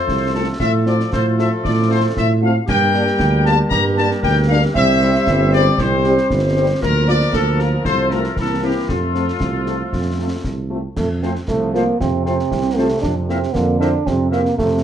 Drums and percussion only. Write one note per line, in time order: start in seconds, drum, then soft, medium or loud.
0.09 concert bass drum medium
0.09 snare medium
0.60 concert bass drum medium
0.60 snare medium
0.86 snare soft
1.00 snare soft
1.13 concert bass drum medium
1.13 snare medium
1.39 snare medium
1.65 concert bass drum medium
1.65 snare medium
2.17 concert bass drum medium
2.17 snare medium
2.68 concert bass drum medium
2.68 snare medium
2.68 crash soft
2.94 snare medium
3.07 snare soft
3.19 concert bass drum medium
3.19 snare medium
3.46 snare medium
3.71 concert bass drum medium
3.71 snare medium
3.98 snare soft
4.11 snare soft
4.23 concert bass drum medium
4.23 snare medium
4.75 concert bass drum medium
4.75 snare medium
5.01 snare soft
5.15 snare medium
5.27 concert bass drum medium
5.27 snare medium
5.53 snare medium
5.78 concert bass drum medium
5.78 snare medium
6.04 snare medium
6.18 snare soft
6.30 concert bass drum medium
6.30 snare medium
6.83 concert bass drum medium
6.83 snare medium
6.83 crash soft
7.08 snare medium
7.21 snare medium
7.33 concert bass drum medium
7.33 snare medium
7.59 snare medium
7.85 concert bass drum medium
7.85 snare medium
8.11 snare soft
8.24 snare soft
8.37 concert bass drum medium
8.37 snare medium
8.89 concert bass drum medium
8.89 snare medium
9.15 snare soft
9.28 snare soft
9.40 concert bass drum medium
9.40 snare medium
9.66 snare medium
9.93 concert bass drum medium
9.93 snare medium
10.44 concert bass drum medium
10.44 snare medium
10.97 concert bass drum medium
10.97 snare medium
10.97 crash soft
11.23 snare soft
11.36 snare soft
11.48 concert bass drum medium
11.48 snare medium
11.75 snare medium
12.01 concert bass drum medium
12.01 snare medium
12.26 snare soft
12.39 snare soft
12.51 concert bass drum medium
12.51 snare medium
13.03 concert bass drum medium
13.03 snare medium
13.29 snare medium
13.43 snare soft
13.55 concert bass drum medium
13.55 snare medium
13.81 snare medium
14.07 concert bass drum medium
14.07 snare medium
14.32 snare soft
14.45 snare medium
14.59 concert bass drum medium
14.59 snare medium